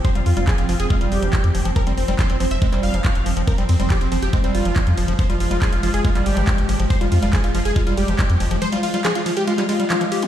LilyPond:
<<
  \new Staff \with { instrumentName = "Supersaw synth" } { \time 4/4 \key f \minor \tempo 4 = 140 c''16 f'16 f'16 f'16 aes'16 f'16 f'16 aes'16 f'16 f'16 g'4~ g'16 r16 | bes'16 c'16 c'16 c'16 c''16 c'16 c'16 e''16 c'16 c'16 f''4~ f''16 r16 | bes'16 c'16 c'16 c'16 g'16 c'16 c'16 g'16 c'16 c'16 f'4~ f'16 r16 | c''16 f'16 f'16 f'16 aes'16 f'16 f'16 aes'16 f'16 f'16 g'4~ g'16 r16 |
c''16 f'16 f'16 f'16 aes'16 f'16 f'16 aes'16 f'16 f'16 g'4~ g'16 r16 | c''16 f'16 f'16 f'16 aes'16 f'16 f'16 g'16 f'16 f'16 f'4~ f'16 r16 | }
  \new Staff \with { instrumentName = "Synth drone" } { \clef bass \time 4/4 \key f \minor <f c'>1~ | <f c'>1 | aes1~ | aes1~ |
aes1~ | aes1 | }
  \new Staff \with { instrumentName = "Acid bass" } { \clef bass \time 4/4 \key f \minor f16 g16 r16 g16 f16 r16 f16 r16 aes16 g8 e16 f16 r16 f16 f16 | f16 g16 r16 g16 f16 r16 f16 r16 aes16 g8 e16 f16 r16 f16 f16 | f16 g16 r16 g16 f16 r16 f16 r16 aes16 g8 e16 f16 r16 f16 f16 | f16 g16 r16 g16 f16 r16 f16 r16 aes16 g8 e16 f16 r16 f16 f16 |
f16 g16 r16 g16 f16 r16 f16 r16 aes16 g8 e16 f16 r16 f16 f16 | f16 g16 r16 g16 f16 r16 f16 r16 aes16 g16 aes16 g16 f16 f16 g'16 f16 | }
  \new Staff \with { instrumentName = "Analog synth bass" } { \clef bass \time 4/4 \key f \minor r16 f,,16 f,16 f,,16 r16 f,,16 f,,16 f,,16 r16 f,,16 f,,16 f,,16 r16 f,16 f,,16 f,,16 | r16 f,,16 f,,16 f,,16 r16 f,,16 f,,16 f,,16 r16 f,,16 f,,16 f,,16 r16 f,,16 f,,16 f,,16 | r16 f,,16 f,16 f,,16 r16 f,,16 f,,16 f,,16 r16 f,,16 f,,16 f,,16 r16 f,16 f,,16 f,,16 | r16 f,,16 f,,16 f,,16 r16 f,,16 f,,16 f,,16 r16 g,,16 g,,16 g,,16 r16 g,,16 g,,16 g,,16 |
r16 f,,16 f,16 f,,16 r16 f,,16 f,,16 f,,16 r16 f,,16 f,,16 f,,16 r16 f,16 f,,16 f,,16 | r1 | }
  \new DrumStaff \with { instrumentName = "Drums" } \drummode { \time 4/4 <hh bd>16 hh16 hho16 hh16 <hc hh bd>16 hh16 hho16 hh16 <hh bd>16 hh16 hho16 hh16 <hc hh bd>16 hh16 hho16 hh16 | <hh bd>16 hh16 hho16 hh16 <hc hh bd>16 hh16 hho16 hh16 <hh bd>16 <hc hh>16 hho16 hh16 <hc hh bd>16 hh16 hho16 hh16 | <hh bd cymr>16 hh16 <hho cymr>16 hh16 <hc hh bd cymr>16 hh16 <hho cymr>16 hh16 <hh bd cymr>16 hh16 <hho cymr>16 hh16 <hc hh bd cymr>16 hh16 <hho cymr>16 hh16 | <hh bd cymr>16 hh16 <hho cymr>16 hh16 <hc hh bd cymr>16 hh16 <hho cymr>16 hh16 <hh bd cymr>16 <hc hh>16 <hho cymr>16 hh16 <hc hh bd cymr>16 hh16 <hho cymr>16 hh16 |
<hh bd cymr>16 hh16 <hho cymr>16 hh16 <hc hh bd cymr>16 hh16 <hho cymr>16 hh16 <hh bd cymr>16 hh16 <hho cymr>16 hh16 <hc hh bd cymr>16 hh16 <hho cymr>16 hh16 | <hh cymr>16 hh16 <hho cymr>16 hh16 <hc hh cymr>16 hh16 <hho cymr>16 hh16 <hh cymr>16 <hc hh>16 <hho cymr>16 hh16 <hc hh cymr>16 hh16 <hho cymr>16 hh16 | }
>>